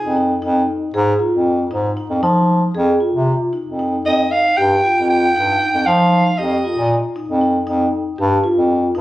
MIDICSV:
0, 0, Header, 1, 4, 480
1, 0, Start_track
1, 0, Tempo, 516796
1, 390, Time_signature, 7, 3, 24, 8
1, 8367, End_track
2, 0, Start_track
2, 0, Title_t, "Soprano saxophone"
2, 0, Program_c, 0, 64
2, 0, Note_on_c, 0, 68, 73
2, 179, Note_off_c, 0, 68, 0
2, 3768, Note_on_c, 0, 75, 90
2, 4004, Note_on_c, 0, 77, 98
2, 4018, Note_off_c, 0, 75, 0
2, 4244, Note_on_c, 0, 79, 99
2, 4258, Note_off_c, 0, 77, 0
2, 4728, Note_off_c, 0, 79, 0
2, 4734, Note_on_c, 0, 79, 96
2, 5444, Note_on_c, 0, 77, 101
2, 5458, Note_off_c, 0, 79, 0
2, 5922, Note_on_c, 0, 75, 78
2, 5936, Note_off_c, 0, 77, 0
2, 6460, Note_off_c, 0, 75, 0
2, 8367, End_track
3, 0, Start_track
3, 0, Title_t, "Vibraphone"
3, 0, Program_c, 1, 11
3, 0, Note_on_c, 1, 63, 83
3, 119, Note_off_c, 1, 63, 0
3, 151, Note_on_c, 1, 63, 70
3, 357, Note_off_c, 1, 63, 0
3, 391, Note_on_c, 1, 63, 88
3, 802, Note_off_c, 1, 63, 0
3, 872, Note_on_c, 1, 68, 86
3, 1076, Note_off_c, 1, 68, 0
3, 1109, Note_on_c, 1, 65, 63
3, 1519, Note_off_c, 1, 65, 0
3, 1588, Note_on_c, 1, 63, 75
3, 1792, Note_off_c, 1, 63, 0
3, 1829, Note_on_c, 1, 63, 68
3, 2033, Note_off_c, 1, 63, 0
3, 2069, Note_on_c, 1, 63, 89
3, 2480, Note_off_c, 1, 63, 0
3, 2551, Note_on_c, 1, 68, 82
3, 2756, Note_off_c, 1, 68, 0
3, 2790, Note_on_c, 1, 65, 61
3, 3206, Note_off_c, 1, 65, 0
3, 3278, Note_on_c, 1, 63, 67
3, 3485, Note_off_c, 1, 63, 0
3, 3522, Note_on_c, 1, 63, 69
3, 3730, Note_off_c, 1, 63, 0
3, 3762, Note_on_c, 1, 63, 77
3, 4180, Note_off_c, 1, 63, 0
3, 4249, Note_on_c, 1, 67, 85
3, 4457, Note_off_c, 1, 67, 0
3, 4490, Note_on_c, 1, 65, 65
3, 4905, Note_off_c, 1, 65, 0
3, 4975, Note_on_c, 1, 63, 79
3, 5179, Note_off_c, 1, 63, 0
3, 5216, Note_on_c, 1, 63, 72
3, 5419, Note_off_c, 1, 63, 0
3, 5457, Note_on_c, 1, 63, 92
3, 5864, Note_off_c, 1, 63, 0
3, 5936, Note_on_c, 1, 67, 81
3, 6137, Note_off_c, 1, 67, 0
3, 6170, Note_on_c, 1, 65, 60
3, 6576, Note_off_c, 1, 65, 0
3, 6649, Note_on_c, 1, 63, 80
3, 6850, Note_off_c, 1, 63, 0
3, 6883, Note_on_c, 1, 63, 74
3, 7086, Note_off_c, 1, 63, 0
3, 7121, Note_on_c, 1, 63, 85
3, 7531, Note_off_c, 1, 63, 0
3, 7600, Note_on_c, 1, 67, 78
3, 7804, Note_off_c, 1, 67, 0
3, 7836, Note_on_c, 1, 65, 74
3, 8245, Note_off_c, 1, 65, 0
3, 8311, Note_on_c, 1, 63, 84
3, 8367, Note_off_c, 1, 63, 0
3, 8367, End_track
4, 0, Start_track
4, 0, Title_t, "Bass clarinet"
4, 0, Program_c, 2, 71
4, 38, Note_on_c, 2, 41, 90
4, 324, Note_off_c, 2, 41, 0
4, 401, Note_on_c, 2, 41, 94
4, 589, Note_off_c, 2, 41, 0
4, 872, Note_on_c, 2, 44, 101
4, 1063, Note_off_c, 2, 44, 0
4, 1234, Note_on_c, 2, 41, 86
4, 1519, Note_off_c, 2, 41, 0
4, 1588, Note_on_c, 2, 44, 91
4, 1779, Note_off_c, 2, 44, 0
4, 1950, Note_on_c, 2, 41, 80
4, 2044, Note_off_c, 2, 41, 0
4, 2067, Note_on_c, 2, 53, 87
4, 2452, Note_off_c, 2, 53, 0
4, 2551, Note_on_c, 2, 41, 97
4, 2743, Note_off_c, 2, 41, 0
4, 2912, Note_on_c, 2, 48, 82
4, 3105, Note_off_c, 2, 48, 0
4, 3400, Note_on_c, 2, 41, 73
4, 3692, Note_off_c, 2, 41, 0
4, 3763, Note_on_c, 2, 41, 88
4, 3958, Note_off_c, 2, 41, 0
4, 4253, Note_on_c, 2, 43, 89
4, 4446, Note_off_c, 2, 43, 0
4, 4618, Note_on_c, 2, 41, 83
4, 4906, Note_off_c, 2, 41, 0
4, 4973, Note_on_c, 2, 43, 75
4, 5165, Note_off_c, 2, 43, 0
4, 5330, Note_on_c, 2, 41, 72
4, 5426, Note_off_c, 2, 41, 0
4, 5451, Note_on_c, 2, 53, 92
4, 5834, Note_off_c, 2, 53, 0
4, 5931, Note_on_c, 2, 41, 95
4, 6120, Note_off_c, 2, 41, 0
4, 6291, Note_on_c, 2, 46, 89
4, 6479, Note_off_c, 2, 46, 0
4, 6764, Note_on_c, 2, 41, 90
4, 7049, Note_off_c, 2, 41, 0
4, 7125, Note_on_c, 2, 41, 93
4, 7314, Note_off_c, 2, 41, 0
4, 7604, Note_on_c, 2, 43, 106
4, 7793, Note_off_c, 2, 43, 0
4, 7965, Note_on_c, 2, 41, 85
4, 8248, Note_off_c, 2, 41, 0
4, 8321, Note_on_c, 2, 43, 100
4, 8367, Note_off_c, 2, 43, 0
4, 8367, End_track
0, 0, End_of_file